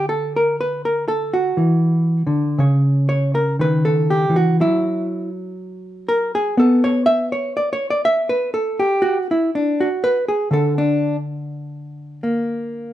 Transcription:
0, 0, Header, 1, 2, 480
1, 0, Start_track
1, 0, Key_signature, 2, "major"
1, 0, Tempo, 1005025
1, 1238, Time_signature, 4, 2, 24, 8
1, 2672, Tempo, 983607
1, 5072, Tempo, 1020408
1, 6209, End_track
2, 0, Start_track
2, 0, Title_t, "Hollow-body jazz guitar"
2, 0, Program_c, 0, 26
2, 0, Note_on_c, 0, 50, 67
2, 0, Note_on_c, 0, 61, 44
2, 43, Note_on_c, 0, 69, 73
2, 159, Note_off_c, 0, 69, 0
2, 174, Note_on_c, 0, 70, 70
2, 262, Note_off_c, 0, 70, 0
2, 289, Note_on_c, 0, 71, 72
2, 405, Note_off_c, 0, 71, 0
2, 407, Note_on_c, 0, 70, 70
2, 515, Note_off_c, 0, 70, 0
2, 517, Note_on_c, 0, 69, 83
2, 637, Note_off_c, 0, 69, 0
2, 638, Note_on_c, 0, 66, 71
2, 748, Note_off_c, 0, 50, 0
2, 750, Note_on_c, 0, 52, 63
2, 1080, Note_off_c, 0, 52, 0
2, 1082, Note_on_c, 0, 50, 61
2, 1140, Note_off_c, 0, 66, 0
2, 1218, Note_off_c, 0, 61, 0
2, 1235, Note_on_c, 0, 49, 72
2, 1236, Note_off_c, 0, 50, 0
2, 1242, Note_on_c, 0, 73, 46
2, 1469, Note_off_c, 0, 73, 0
2, 1475, Note_on_c, 0, 73, 82
2, 1597, Note_off_c, 0, 73, 0
2, 1599, Note_on_c, 0, 70, 79
2, 1697, Note_off_c, 0, 70, 0
2, 1716, Note_on_c, 0, 51, 55
2, 1725, Note_on_c, 0, 71, 83
2, 1839, Note_on_c, 0, 69, 73
2, 1886, Note_off_c, 0, 71, 0
2, 1960, Note_on_c, 0, 67, 78
2, 2025, Note_off_c, 0, 69, 0
2, 2045, Note_off_c, 0, 51, 0
2, 2051, Note_on_c, 0, 52, 58
2, 2079, Note_off_c, 0, 67, 0
2, 2083, Note_on_c, 0, 66, 76
2, 2178, Note_off_c, 0, 49, 0
2, 2179, Note_off_c, 0, 66, 0
2, 2200, Note_on_c, 0, 54, 65
2, 2201, Note_off_c, 0, 52, 0
2, 2203, Note_on_c, 0, 64, 79
2, 2527, Note_off_c, 0, 64, 0
2, 2911, Note_on_c, 0, 70, 93
2, 3033, Note_off_c, 0, 70, 0
2, 3040, Note_on_c, 0, 68, 81
2, 3135, Note_off_c, 0, 68, 0
2, 3148, Note_off_c, 0, 54, 0
2, 3150, Note_on_c, 0, 59, 77
2, 3160, Note_on_c, 0, 69, 76
2, 3280, Note_on_c, 0, 73, 79
2, 3320, Note_off_c, 0, 69, 0
2, 3385, Note_off_c, 0, 73, 0
2, 3387, Note_on_c, 0, 76, 117
2, 3509, Note_off_c, 0, 76, 0
2, 3515, Note_on_c, 0, 73, 81
2, 3611, Note_off_c, 0, 73, 0
2, 3635, Note_on_c, 0, 74, 86
2, 3711, Note_off_c, 0, 74, 0
2, 3713, Note_on_c, 0, 73, 88
2, 3776, Note_off_c, 0, 73, 0
2, 3799, Note_on_c, 0, 74, 91
2, 3868, Note_off_c, 0, 74, 0
2, 3870, Note_on_c, 0, 76, 106
2, 3989, Note_off_c, 0, 76, 0
2, 3989, Note_on_c, 0, 71, 84
2, 4086, Note_off_c, 0, 71, 0
2, 4109, Note_on_c, 0, 69, 74
2, 4234, Note_on_c, 0, 67, 73
2, 4272, Note_off_c, 0, 69, 0
2, 4343, Note_on_c, 0, 66, 87
2, 4417, Note_off_c, 0, 67, 0
2, 4466, Note_off_c, 0, 66, 0
2, 4485, Note_on_c, 0, 64, 62
2, 4576, Note_off_c, 0, 64, 0
2, 4603, Note_on_c, 0, 62, 67
2, 4727, Note_on_c, 0, 66, 72
2, 4762, Note_off_c, 0, 62, 0
2, 4840, Note_on_c, 0, 71, 112
2, 4906, Note_off_c, 0, 66, 0
2, 4957, Note_off_c, 0, 71, 0
2, 4961, Note_on_c, 0, 68, 81
2, 5053, Note_off_c, 0, 59, 0
2, 5055, Note_off_c, 0, 68, 0
2, 5070, Note_on_c, 0, 50, 70
2, 5082, Note_on_c, 0, 69, 75
2, 5196, Note_off_c, 0, 69, 0
2, 5198, Note_on_c, 0, 62, 76
2, 5376, Note_off_c, 0, 62, 0
2, 5881, Note_on_c, 0, 58, 39
2, 6209, Note_off_c, 0, 50, 0
2, 6209, Note_off_c, 0, 58, 0
2, 6209, End_track
0, 0, End_of_file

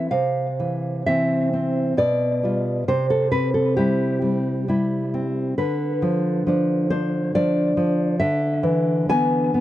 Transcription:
0, 0, Header, 1, 2, 480
1, 0, Start_track
1, 0, Tempo, 925926
1, 62, Time_signature, 3, 2, 24, 8
1, 1020, Tempo, 890208
1, 5138, End_track
2, 0, Start_track
2, 0, Title_t, "Nylon-string guitar"
2, 0, Program_c, 0, 24
2, 0, Note_on_c, 0, 57, 46
2, 57, Note_on_c, 0, 77, 68
2, 60, Note_on_c, 0, 48, 52
2, 61, Note_off_c, 0, 57, 0
2, 309, Note_on_c, 0, 52, 46
2, 526, Note_off_c, 0, 77, 0
2, 550, Note_off_c, 0, 52, 0
2, 552, Note_on_c, 0, 76, 77
2, 556, Note_on_c, 0, 52, 47
2, 559, Note_on_c, 0, 60, 47
2, 789, Note_off_c, 0, 60, 0
2, 795, Note_on_c, 0, 60, 47
2, 998, Note_off_c, 0, 48, 0
2, 1003, Note_off_c, 0, 52, 0
2, 1003, Note_off_c, 0, 76, 0
2, 1023, Note_on_c, 0, 47, 62
2, 1025, Note_off_c, 0, 60, 0
2, 1027, Note_on_c, 0, 74, 81
2, 1271, Note_on_c, 0, 55, 42
2, 1279, Note_on_c, 0, 65, 46
2, 1481, Note_off_c, 0, 55, 0
2, 1482, Note_off_c, 0, 74, 0
2, 1486, Note_off_c, 0, 47, 0
2, 1486, Note_off_c, 0, 65, 0
2, 1512, Note_on_c, 0, 48, 52
2, 1514, Note_on_c, 0, 72, 85
2, 1623, Note_off_c, 0, 72, 0
2, 1632, Note_on_c, 0, 69, 65
2, 1743, Note_off_c, 0, 69, 0
2, 1747, Note_on_c, 0, 71, 82
2, 1748, Note_on_c, 0, 60, 47
2, 1860, Note_off_c, 0, 71, 0
2, 1868, Note_on_c, 0, 69, 59
2, 1981, Note_off_c, 0, 69, 0
2, 1989, Note_on_c, 0, 67, 76
2, 1996, Note_on_c, 0, 55, 50
2, 2000, Note_on_c, 0, 64, 50
2, 2227, Note_off_c, 0, 55, 0
2, 2233, Note_on_c, 0, 55, 46
2, 2450, Note_off_c, 0, 67, 0
2, 2468, Note_off_c, 0, 60, 0
2, 2478, Note_off_c, 0, 55, 0
2, 2484, Note_off_c, 0, 64, 0
2, 2484, Note_on_c, 0, 55, 50
2, 2490, Note_on_c, 0, 64, 52
2, 2730, Note_on_c, 0, 60, 49
2, 2938, Note_off_c, 0, 48, 0
2, 2942, Note_off_c, 0, 55, 0
2, 2945, Note_off_c, 0, 64, 0
2, 2962, Note_off_c, 0, 60, 0
2, 2967, Note_on_c, 0, 71, 68
2, 2970, Note_on_c, 0, 50, 61
2, 3206, Note_on_c, 0, 53, 56
2, 3439, Note_off_c, 0, 53, 0
2, 3446, Note_on_c, 0, 53, 53
2, 3453, Note_on_c, 0, 62, 57
2, 3661, Note_off_c, 0, 71, 0
2, 3678, Note_off_c, 0, 62, 0
2, 3681, Note_on_c, 0, 72, 81
2, 3684, Note_on_c, 0, 62, 56
2, 3906, Note_off_c, 0, 72, 0
2, 3915, Note_off_c, 0, 53, 0
2, 3919, Note_off_c, 0, 62, 0
2, 3921, Note_on_c, 0, 53, 50
2, 3922, Note_on_c, 0, 74, 88
2, 3926, Note_on_c, 0, 62, 57
2, 4142, Note_off_c, 0, 53, 0
2, 4149, Note_on_c, 0, 53, 56
2, 4355, Note_off_c, 0, 62, 0
2, 4356, Note_off_c, 0, 74, 0
2, 4357, Note_off_c, 0, 50, 0
2, 4374, Note_off_c, 0, 53, 0
2, 4378, Note_on_c, 0, 76, 86
2, 4384, Note_on_c, 0, 50, 67
2, 4613, Note_on_c, 0, 52, 58
2, 4838, Note_off_c, 0, 76, 0
2, 4855, Note_off_c, 0, 52, 0
2, 4861, Note_on_c, 0, 52, 58
2, 4863, Note_on_c, 0, 80, 95
2, 4866, Note_on_c, 0, 59, 64
2, 5097, Note_off_c, 0, 59, 0
2, 5104, Note_on_c, 0, 59, 54
2, 5138, Note_off_c, 0, 50, 0
2, 5138, Note_off_c, 0, 52, 0
2, 5138, Note_off_c, 0, 59, 0
2, 5138, Note_off_c, 0, 80, 0
2, 5138, End_track
0, 0, End_of_file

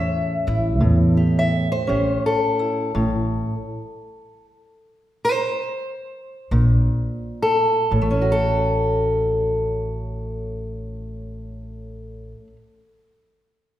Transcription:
0, 0, Header, 1, 3, 480
1, 0, Start_track
1, 0, Tempo, 700935
1, 1528, Tempo, 724638
1, 2001, Time_signature, 12, 3, 24, 8
1, 2488, Tempo, 777202
1, 3448, Tempo, 836820
1, 3928, Tempo, 890208
1, 4408, Tempo, 956938
1, 4888, Tempo, 995025
1, 7725, End_track
2, 0, Start_track
2, 0, Title_t, "Steel-string acoustic guitar"
2, 0, Program_c, 0, 25
2, 0, Note_on_c, 0, 45, 66
2, 0, Note_on_c, 0, 52, 68
2, 0, Note_on_c, 0, 61, 51
2, 0, Note_on_c, 0, 76, 86
2, 82, Note_off_c, 0, 52, 0
2, 322, Note_on_c, 0, 64, 44
2, 542, Note_off_c, 0, 45, 0
2, 551, Note_on_c, 0, 45, 64
2, 803, Note_on_c, 0, 67, 45
2, 937, Note_off_c, 0, 76, 0
2, 950, Note_on_c, 0, 76, 75
2, 1174, Note_off_c, 0, 76, 0
2, 1176, Note_on_c, 0, 72, 79
2, 1273, Note_off_c, 0, 61, 0
2, 1282, Note_on_c, 0, 61, 63
2, 1284, Note_off_c, 0, 67, 0
2, 1292, Note_on_c, 0, 67, 43
2, 1533, Note_off_c, 0, 72, 0
2, 1547, Note_on_c, 0, 69, 76
2, 1761, Note_off_c, 0, 64, 0
2, 1767, Note_on_c, 0, 64, 41
2, 1971, Note_off_c, 0, 61, 0
2, 1975, Note_off_c, 0, 64, 0
2, 1975, Note_off_c, 0, 67, 0
2, 1994, Note_off_c, 0, 45, 0
2, 2003, Note_on_c, 0, 45, 66
2, 2390, Note_off_c, 0, 45, 0
2, 2967, Note_off_c, 0, 69, 0
2, 3454, Note_on_c, 0, 72, 85
2, 4168, Note_on_c, 0, 46, 63
2, 4638, Note_off_c, 0, 72, 0
2, 4640, Note_on_c, 0, 69, 87
2, 4860, Note_off_c, 0, 46, 0
2, 4883, Note_on_c, 0, 45, 55
2, 4886, Note_off_c, 0, 69, 0
2, 4935, Note_on_c, 0, 57, 54
2, 4978, Note_on_c, 0, 61, 48
2, 5031, Note_on_c, 0, 66, 50
2, 5080, Note_on_c, 0, 69, 84
2, 7032, Note_off_c, 0, 45, 0
2, 7083, Note_off_c, 0, 57, 0
2, 7127, Note_off_c, 0, 61, 0
2, 7179, Note_off_c, 0, 66, 0
2, 7209, Note_off_c, 0, 69, 0
2, 7725, End_track
3, 0, Start_track
3, 0, Title_t, "Upright bass"
3, 0, Program_c, 1, 32
3, 0, Note_on_c, 1, 40, 88
3, 232, Note_off_c, 1, 40, 0
3, 325, Note_on_c, 1, 33, 92
3, 561, Note_off_c, 1, 33, 0
3, 561, Note_on_c, 1, 40, 79
3, 1137, Note_off_c, 1, 40, 0
3, 1294, Note_on_c, 1, 33, 81
3, 1484, Note_off_c, 1, 33, 0
3, 2001, Note_on_c, 1, 33, 85
3, 2311, Note_off_c, 1, 33, 0
3, 4166, Note_on_c, 1, 34, 85
3, 4360, Note_off_c, 1, 34, 0
3, 4887, Note_on_c, 1, 33, 80
3, 7016, Note_off_c, 1, 33, 0
3, 7725, End_track
0, 0, End_of_file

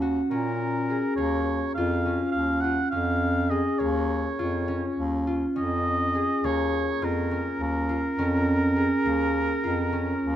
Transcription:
0, 0, Header, 1, 4, 480
1, 0, Start_track
1, 0, Tempo, 583658
1, 970, Time_signature, 9, 3, 24, 8
1, 8519, End_track
2, 0, Start_track
2, 0, Title_t, "Oboe"
2, 0, Program_c, 0, 68
2, 250, Note_on_c, 0, 70, 72
2, 937, Note_off_c, 0, 70, 0
2, 955, Note_on_c, 0, 73, 85
2, 1409, Note_off_c, 0, 73, 0
2, 1437, Note_on_c, 0, 77, 75
2, 1890, Note_off_c, 0, 77, 0
2, 1905, Note_on_c, 0, 77, 93
2, 2143, Note_on_c, 0, 78, 87
2, 2155, Note_off_c, 0, 77, 0
2, 2388, Note_off_c, 0, 78, 0
2, 2393, Note_on_c, 0, 77, 91
2, 2877, Note_on_c, 0, 75, 77
2, 2889, Note_off_c, 0, 77, 0
2, 3114, Note_on_c, 0, 73, 76
2, 3126, Note_off_c, 0, 75, 0
2, 4338, Note_off_c, 0, 73, 0
2, 4573, Note_on_c, 0, 75, 103
2, 5304, Note_on_c, 0, 73, 89
2, 5316, Note_off_c, 0, 75, 0
2, 5793, Note_on_c, 0, 70, 70
2, 5805, Note_off_c, 0, 73, 0
2, 6262, Note_off_c, 0, 70, 0
2, 6274, Note_on_c, 0, 70, 91
2, 8519, Note_off_c, 0, 70, 0
2, 8519, End_track
3, 0, Start_track
3, 0, Title_t, "Harp"
3, 0, Program_c, 1, 46
3, 0, Note_on_c, 1, 58, 67
3, 0, Note_on_c, 1, 61, 62
3, 0, Note_on_c, 1, 68, 56
3, 14, Note_on_c, 1, 66, 66
3, 251, Note_off_c, 1, 61, 0
3, 254, Note_on_c, 1, 61, 70
3, 443, Note_off_c, 1, 68, 0
3, 738, Note_on_c, 1, 68, 55
3, 963, Note_off_c, 1, 58, 0
3, 966, Note_on_c, 1, 58, 66
3, 1459, Note_on_c, 1, 65, 70
3, 1508, Note_off_c, 1, 66, 0
3, 1687, Note_off_c, 1, 61, 0
3, 1690, Note_on_c, 1, 61, 58
3, 2167, Note_off_c, 1, 65, 0
3, 2170, Note_on_c, 1, 65, 62
3, 2398, Note_off_c, 1, 61, 0
3, 2401, Note_on_c, 1, 61, 68
3, 2608, Note_off_c, 1, 68, 0
3, 2885, Note_on_c, 1, 68, 54
3, 3121, Note_off_c, 1, 58, 0
3, 3124, Note_on_c, 1, 58, 68
3, 3606, Note_off_c, 1, 65, 0
3, 3610, Note_on_c, 1, 65, 63
3, 3845, Note_off_c, 1, 61, 0
3, 3848, Note_on_c, 1, 61, 67
3, 4331, Note_off_c, 1, 65, 0
3, 4334, Note_on_c, 1, 65, 63
3, 4567, Note_off_c, 1, 61, 0
3, 4570, Note_on_c, 1, 61, 69
3, 4755, Note_off_c, 1, 68, 0
3, 5058, Note_on_c, 1, 68, 57
3, 5292, Note_off_c, 1, 58, 0
3, 5296, Note_on_c, 1, 58, 73
3, 5769, Note_off_c, 1, 65, 0
3, 5772, Note_on_c, 1, 65, 73
3, 6010, Note_off_c, 1, 61, 0
3, 6014, Note_on_c, 1, 61, 66
3, 6485, Note_off_c, 1, 65, 0
3, 6488, Note_on_c, 1, 65, 69
3, 6729, Note_off_c, 1, 61, 0
3, 6732, Note_on_c, 1, 61, 77
3, 6928, Note_off_c, 1, 68, 0
3, 7208, Note_on_c, 1, 68, 49
3, 7443, Note_off_c, 1, 58, 0
3, 7446, Note_on_c, 1, 58, 73
3, 7922, Note_off_c, 1, 65, 0
3, 7925, Note_on_c, 1, 65, 69
3, 8159, Note_off_c, 1, 61, 0
3, 8162, Note_on_c, 1, 61, 65
3, 8519, Note_off_c, 1, 58, 0
3, 8519, Note_off_c, 1, 61, 0
3, 8519, Note_off_c, 1, 65, 0
3, 8519, Note_off_c, 1, 68, 0
3, 8519, End_track
4, 0, Start_track
4, 0, Title_t, "Bass clarinet"
4, 0, Program_c, 2, 71
4, 0, Note_on_c, 2, 39, 73
4, 178, Note_off_c, 2, 39, 0
4, 250, Note_on_c, 2, 46, 72
4, 855, Note_off_c, 2, 46, 0
4, 964, Note_on_c, 2, 39, 81
4, 1370, Note_off_c, 2, 39, 0
4, 1442, Note_on_c, 2, 41, 76
4, 1848, Note_off_c, 2, 41, 0
4, 1926, Note_on_c, 2, 39, 73
4, 2330, Note_off_c, 2, 39, 0
4, 2407, Note_on_c, 2, 41, 83
4, 3013, Note_off_c, 2, 41, 0
4, 3121, Note_on_c, 2, 39, 85
4, 3527, Note_off_c, 2, 39, 0
4, 3602, Note_on_c, 2, 41, 72
4, 4008, Note_off_c, 2, 41, 0
4, 4084, Note_on_c, 2, 39, 78
4, 4489, Note_off_c, 2, 39, 0
4, 4560, Note_on_c, 2, 41, 75
4, 5170, Note_off_c, 2, 41, 0
4, 5285, Note_on_c, 2, 39, 83
4, 5691, Note_off_c, 2, 39, 0
4, 5765, Note_on_c, 2, 41, 79
4, 6171, Note_off_c, 2, 41, 0
4, 6250, Note_on_c, 2, 39, 75
4, 6654, Note_off_c, 2, 39, 0
4, 6728, Note_on_c, 2, 41, 82
4, 7336, Note_off_c, 2, 41, 0
4, 7450, Note_on_c, 2, 39, 80
4, 7855, Note_off_c, 2, 39, 0
4, 7934, Note_on_c, 2, 41, 74
4, 8337, Note_off_c, 2, 41, 0
4, 8417, Note_on_c, 2, 39, 85
4, 8519, Note_off_c, 2, 39, 0
4, 8519, End_track
0, 0, End_of_file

